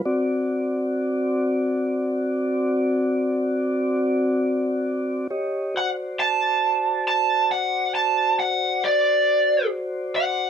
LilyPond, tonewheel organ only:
\new Staff \with { instrumentName = "Tonewheel organ" } { \time 12/8 \key d \dorian \tempo 4. = 46 <c' fis' d''>1. | <g' cis'' ees''>8 <fis' c'' d''>1~ <fis' c'' d''>4. | }